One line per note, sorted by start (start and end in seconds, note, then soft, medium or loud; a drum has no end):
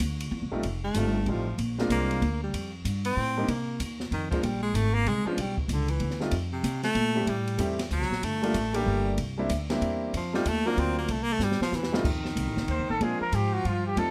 0.00 0.31 D2 medium
0.00 kick soft
0.20 ride medium
0.31 0.43 E2 medium
0.31 kick soft
0.42 0.51 C2 medium
0.52 0.62 A#1 medium
0.52 0.62 G3 medium
0.52 0.62 A3 medium
0.52 0.62 C4 medium
0.52 0.63 D#4 medium
0.52 0.63 F4 medium
0.63 0.94 F1 medium
0.63 kick soft
0.63 ride medium
0.84 1.31 A3 medium
0.94 1.25 G1 medium
0.94 1.13 G3 medium
0.94 1.14 A3 medium
0.94 1.14 C4 medium
0.94 1.14 D#4 soft
0.94 1.14 F4 medium
0.94 kick soft
0.94 hi-hat pedal medium
0.94 ride medium
1.26 1.57 A1 medium
1.26 1.60 F3 medium
1.26 1.45 G3 medium
1.26 1.45 A3 soft
1.26 1.46 C4 medium
1.26 1.46 D#4 soft
1.26 1.46 F4 medium
1.26 kick soft
1.26 ride soft
1.58 1.89 A#1 medium
1.58 kick soft
1.58 ride medium
1.78 2.19 G#3 medium
1.78 2.20 A#3 medium
1.78 2.20 C4 medium
1.78 2.20 D4 medium
1.78 2.20 F4 medium
1.78 snare medium
1.89 2.20 C2 medium
1.89 2.39 A#3 loud
1.89 kick soft
1.89 hi-hat pedal medium
1.89 ride medium
2.11 ride soft
2.22 2.52 D2 loud
2.22 kick soft
2.22 ride medium
2.43 2.72 G3 medium
2.54 2.84 F2 medium
2.54 kick soft
2.54 ride medium
2.85 3.15 G2 medium
2.85 kick soft
2.85 hi-hat pedal medium
2.85 ride medium
3.05 3.52 C4 loud
3.05 ride medium
3.17 3.47 A2 loud
3.17 kick soft
3.37 3.47 G3 medium
3.37 3.47 A#3 medium
3.37 3.47 C4 medium
3.37 3.48 D4 medium
3.37 3.48 D#4 medium
3.48 3.79 C3 medium
3.48 3.81 A#3 medium
3.48 kick soft
3.48 ride medium
3.80 4.10 D#2 medium
3.80 kick soft
3.80 hi-hat pedal medium
3.80 ride medium
4.00 snare medium
4.11 4.42 F2 medium
4.11 4.30 D#3 medium
4.11 kick soft
4.11 ride medium
4.30 4.45 F3 medium
4.30 4.42 G#3 medium
4.30 4.42 A#3 medium
4.30 4.42 C4 medium
4.30 4.43 D4 medium
4.30 4.43 F4 medium
4.30 kick medium
4.30 ride soft
4.42 4.73 A#1 medium
4.42 4.62 G3 medium
4.42 ride medium
4.63 4.77 G#3 loud
4.74 5.05 G#1 medium
4.74 4.96 A3 loud
4.74 kick soft
4.74 hi-hat pedal medium
4.74 ride medium
4.94 5.10 A#3 loud
5.06 5.25 C2 medium
5.06 5.28 G#3 loud
5.06 kick soft
5.06 ride medium
5.25 5.42 F3 medium
5.25 5.36 G#3 medium
5.25 5.36 B3 medium
5.25 5.36 C#4 medium
5.25 5.37 D4 medium
5.25 5.37 F4 medium
5.25 muted upright bass stroke soft
5.37 5.68 B1 medium
5.37 5.58 G3 medium
5.37 kick soft
5.37 ride medium
5.58 5.74 B2 medium
5.58 kick medium
5.68 6.00 C#2 medium
5.68 kick soft
5.68 hi-hat pedal medium
5.68 ride medium
5.73 5.91 D3 medium
5.88 6.21 E3 medium
5.88 ride medium
6.00 6.31 D2 medium
6.00 kick soft
6.00 ride medium
6.10 snare soft
6.20 6.31 G3 medium
6.20 6.31 A3 medium
6.20 6.32 C4 medium
6.20 6.32 D#4 medium
6.20 6.32 F4 medium
6.20 snare soft
6.31 6.63 F2 medium
6.31 kick soft
6.31 ride medium
6.53 6.82 C3 medium
6.63 6.94 C3 medium
6.63 kick soft
6.63 hi-hat pedal medium
6.63 ride medium
6.83 7.31 A3 loud
6.83 snare medium
6.83 ride soft
6.95 7.26 A#2 loud
6.95 kick soft
6.95 ride medium
7.15 7.26 G3 medium
7.15 7.26 A3 medium
7.15 7.26 C4 medium
7.15 7.27 E4 medium
7.15 7.27 G4 medium
7.27 7.58 A2 medium
7.27 7.80 G3 medium
7.27 kick soft
7.27 ride medium
7.47 ride medium
7.58 7.90 E2 medium
7.58 7.77 G3 medium
7.58 7.77 A3 medium
7.58 7.77 C4 medium
7.58 7.78 E4 medium
7.58 7.78 G4 medium
7.58 kick soft
7.58 hi-hat pedal medium
7.58 ride medium
7.79 snare medium
7.79 ride medium
7.90 8.00 D2 medium
7.90 8.26 F#3 loud
7.90 kick soft
7.90 hi-hat pedal medium
8.00 8.10 C2 medium
8.00 snare soft
8.10 8.21 A#1 medium
8.10 snare soft
8.22 8.54 G1 medium
8.22 8.76 A3 medium
8.22 kick soft
8.22 ride medium
8.42 8.53 G3 medium
8.42 8.53 A3 medium
8.42 8.53 A#3 medium
8.42 8.54 D4 medium
8.42 8.54 F4 medium
8.42 ride medium
8.54 8.85 A1 medium
8.54 kick soft
8.54 hi-hat pedal medium
8.54 ride medium
8.74 9.15 G3 medium
8.74 9.18 G3 loud
8.74 9.16 A3 medium
8.74 9.16 A#3 medium
8.74 9.16 D4 medium
8.74 9.16 G4 medium
8.74 ride medium
8.86 9.17 G1 medium
8.86 kick soft
9.18 9.49 C2 medium
9.18 kick soft
9.18 ride medium
9.38 9.48 G3 medium
9.38 9.49 A#3 medium
9.38 9.49 C4 medium
9.38 9.49 D4 medium
9.38 9.49 E4 medium
9.49 9.81 D2 medium
9.49 kick soft
9.49 hi-hat pedal medium
9.49 ride medium
9.70 10.11 G3 medium
9.70 10.11 A#3 medium
9.70 10.11 C4 medium
9.70 10.12 D4 medium
9.70 10.12 E4 medium
9.70 snare medium
9.70 ride medium
9.81 10.12 E2 medium
9.81 kick soft
9.81 ride medium
10.13 10.44 F2 medium
10.13 10.34 F3 medium
10.13 kick soft
10.13 ride medium
10.34 10.44 G3 medium
10.34 10.50 G3 loud
10.34 10.44 A3 medium
10.34 10.44 C4 medium
10.34 10.45 D#4 medium
10.34 10.45 F4 medium
10.34 snare soft
10.45 10.76 D#2 medium
10.45 10.68 A3 loud
10.45 kick soft
10.45 hi-hat pedal medium
10.45 ride medium
10.65 11.07 F#3 medium
10.65 11.07 A#3 medium
10.65 10.81 A#3 loud
10.65 11.07 C4 medium
10.65 11.07 D4 medium
10.65 11.08 F4 loud
10.77 11.08 D2 medium
10.77 10.98 C4 loud
10.77 kick soft
10.77 ride medium
10.98 11.13 A#3 loud
11.08 11.38 C2 medium
11.08 11.24 A3 medium
11.08 kick soft
11.08 ride medium
11.23 11.34 A#3 loud
11.32 11.45 A3 loud
11.39 11.59 G2 medium
11.39 snare medium
11.39 hi-hat pedal medium
11.43 11.62 G3 medium
11.52 snare medium
11.60 11.77 F3 loud
11.60 muted upright bass stroke soft
11.60 snare medium
11.72 12.03 E2 medium
11.72 snare medium
11.72 hi-hat pedal medium
11.76 12.00 E3 medium
11.83 snare medium
11.92 12.03 G3 medium
11.92 12.03 A3 medium
11.92 12.04 C4 medium
11.92 12.04 D#4 medium
11.92 12.04 F4 medium
11.92 snare loud
12.04 12.35 F2 medium
12.04 13.03 D#3 medium
12.04 kick medium
12.04 crash medium
12.25 snare soft
12.36 12.47 C2 medium
12.36 kick soft
12.36 hi-hat pedal medium
12.36 ride medium
12.47 12.57 A1 medium
12.57 12.67 F1 medium
12.57 snare soft
12.68 12.81 D#2 medium
12.68 12.88 C5 medium
12.68 kick soft
12.68 ride soft
12.79 12.89 C2 medium
12.89 12.99 A1 medium
12.89 13.04 A4 medium
13.00 13.19 A#2 medium
13.00 13.97 F3 medium
13.00 13.19 G#3 medium
13.00 13.19 A#3 medium
13.00 13.19 C4 medium
13.00 13.19 D4 medium
13.00 13.20 F4 medium
13.00 13.21 G#4 medium
13.00 kick soft
13.00 ride medium
13.20 13.36 A#4 medium
13.20 muted upright bass stroke soft
13.32 13.63 G#2 medium
13.32 13.55 G4 medium
13.32 kick soft
13.32 hi-hat pedal medium
13.32 ride medium
13.53 13.68 F#4 medium
13.65 13.95 G2 medium
13.65 13.85 F4 medium
13.65 kick soft
13.65 ride soft
13.87 14.00 G4 medium
13.96 14.11 F2 medium
13.96 14.11 F3 medium
13.96 14.11 G3 medium
13.96 14.11 A3 medium
13.96 14.11 C4 medium
13.96 14.11 D#4 medium
13.96 14.11 F4 medium
13.96 14.11 A4 medium
13.96 kick soft
13.96 ride medium